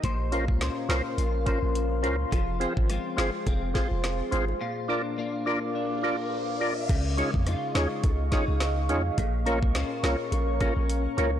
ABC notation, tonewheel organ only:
X:1
M:4/4
L:1/8
Q:"Swing 16ths" 1/4=105
K:Bbdor
V:1 name="Tonewheel organ"
z [DFBc] z [DFBc] z [DFBc] z [DFBc] | z [CFAc] z [CFAc] z [CFAc] z [CFAc] | z [=DFB=d] z [DFBd] z [DFBd] z [DFBd] | z [DEFAd] z [DEFAd] z [DEFAd] z [DEFAd] |
z [B,DFBd] z [B,DFBd] z [B,DFBd] z [B,DFBd] |]